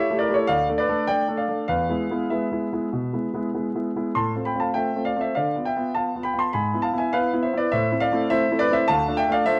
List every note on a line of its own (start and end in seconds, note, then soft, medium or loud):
0.00 0.18 C#5 medium
0.00 0.17 E5 loud
0.10 0.24 A3 medium
0.10 0.25 E4 medium
0.10 0.25 G4 medium
0.19 0.34 A#4 medium
0.19 0.34 D5 medium
0.28 0.43 A3 medium
0.28 0.43 E4 medium
0.28 0.44 G4 medium
0.34 0.49 A4 medium
0.34 0.49 C#5 medium
0.47 0.68 D2 medium
0.47 0.76 D5 medium
0.47 0.66 F5 loud
0.69 0.83 A3 medium
0.69 0.84 D4 soft
0.69 0.84 A4 soft
0.78 1.07 B4 medium
0.78 1.07 D5 medium
0.89 1.03 A3 soft
0.89 1.03 D4 medium
0.89 1.04 A4 medium
1.07 1.23 A3 soft
1.07 1.24 D4 soft
1.07 1.24 A4 medium
1.07 1.36 D5 medium
1.07 1.26 G5 loud
1.28 1.43 A3 soft
1.28 1.43 D4 soft
1.28 1.44 A4 medium
1.37 1.67 D5 medium
1.37 1.66 F5 medium
1.48 1.63 A3 soft
1.48 1.64 D4 soft
1.48 1.64 A4 soft
1.68 1.89 E2 medium
1.68 2.27 B4 medium
1.68 2.30 F5 medium
1.89 2.04 G#3 soft
1.89 2.04 B3 soft
1.89 2.05 E4 soft
2.11 2.25 G#3 soft
2.11 2.26 B3 soft
2.11 2.26 E4 soft
2.30 2.46 G#3 soft
2.30 2.46 B3 soft
2.30 2.46 E4 soft
2.30 3.81 B4 soft
2.30 3.80 E5 medium
2.52 2.66 G#3 soft
2.52 2.66 B3 soft
2.52 2.67 E4 soft
2.73 2.87 G#3 soft
2.73 2.87 B3 soft
2.73 2.88 E4 soft
2.93 3.13 B2 soft
3.13 3.28 G#3 soft
3.13 3.28 B3 soft
3.13 3.28 E4 soft
3.34 3.48 G#3 soft
3.34 3.49 B3 soft
3.34 3.49 E4 soft
3.54 3.69 G#3 soft
3.54 3.69 B3 soft
3.54 3.69 E4 soft
3.75 3.90 G#3 soft
3.75 3.90 B3 soft
3.75 3.90 E4 soft
3.96 4.10 G#3 soft
3.96 4.11 B3 soft
3.96 4.11 E4 soft
4.15 4.35 A2 medium
4.15 4.44 A5 medium
4.15 4.33 C6 medium
4.36 4.50 A3 soft
4.36 4.50 C4 soft
4.36 4.51 F4 soft
4.45 4.60 G5 medium
4.45 4.61 B5 medium
4.55 4.70 A3 soft
4.55 4.70 C4 soft
4.55 4.70 F4 soft
4.60 4.75 F5 medium
4.60 4.75 A5 medium
4.74 4.89 A3 soft
4.74 4.90 C4 soft
4.74 4.90 F4 soft
4.74 5.04 E5 medium
4.74 5.02 G5 medium
4.96 5.10 A3 soft
4.96 5.10 C4 soft
4.96 5.11 F4 soft
5.05 5.20 D5 medium
5.05 5.20 F5 medium
5.16 5.30 A3 soft
5.16 5.31 C4 soft
5.16 5.31 F4 soft
5.21 5.35 C5 medium
5.21 5.36 E5 medium
5.35 5.55 D3 medium
5.35 5.64 D5 medium
5.35 5.53 F5 medium
5.56 5.70 B3 soft
5.56 5.70 F4 soft
5.65 5.94 E5 medium
5.65 5.92 G5 medium
5.76 5.90 B3 soft
5.76 5.90 F4 soft
5.95 6.09 B3 soft
5.95 6.10 F4 soft
5.95 6.23 F5 medium
5.95 6.21 A5 medium
6.15 6.29 B3 soft
6.15 6.29 F4 soft
6.23 6.38 G5 medium
6.23 6.38 B5 medium
6.34 6.48 B3 soft
6.34 6.48 F4 soft
6.39 6.53 A5 medium
6.39 6.53 C6 medium
6.53 6.73 G#2 medium
6.53 6.81 G#5 medium
6.53 6.82 B5 medium
6.73 6.87 B3 soft
6.73 6.88 E4 soft
6.82 6.97 F5 medium
6.82 6.97 A5 medium
6.93 7.07 B3 soft
6.93 7.07 E4 soft
6.98 7.12 E5 medium
6.98 7.12 G#5 medium
7.13 7.28 B3 soft
7.13 7.28 E4 medium
7.13 7.41 B4 medium
7.13 7.30 F5 medium
7.33 7.47 B3 soft
7.33 7.47 E4 soft
7.43 7.57 C5 medium
7.43 7.57 E5 medium
7.53 7.67 B3 medium
7.53 7.67 E4 medium
7.57 7.72 B4 medium
7.57 7.72 D5 medium
7.72 7.91 A2 medium
7.72 7.99 C5 medium
7.72 8.01 E5 medium
7.91 8.05 A3 soft
7.91 8.06 C4 soft
7.91 8.06 E4 soft
8.00 8.28 D5 medium
8.00 8.27 F5 loud
8.12 8.25 A3 medium
8.12 8.26 C4 medium
8.12 8.26 E4 medium
8.30 8.44 A3 medium
8.30 8.45 C4 medium
8.30 8.45 E4 medium
8.30 8.58 C5 medium
8.30 8.59 E5 loud
8.51 8.65 A3 medium
8.51 8.65 C4 medium
8.51 8.65 E4 medium
8.59 8.73 B4 medium
8.59 8.74 D5 loud
8.70 8.84 A3 medium
8.70 8.84 C4 medium
8.70 8.84 E4 medium
8.70 8.88 E5 loud
8.75 8.88 C5 medium
8.88 9.08 D2 medium
8.88 9.16 F5 medium
8.88 9.18 A5 loud
9.08 9.22 A3 medium
9.08 9.22 D4 medium
9.08 9.22 F4 medium
9.17 9.32 E5 medium
9.17 9.32 G5 medium
9.28 9.42 A3 medium
9.28 9.42 D4 medium
9.28 9.42 F4 medium
9.28 9.47 F5 loud
9.33 9.47 D5 medium
9.46 9.60 A3 medium
9.46 9.60 D4 medium
9.46 9.60 F4 medium
9.46 9.60 C5 medium
9.46 9.60 E5 loud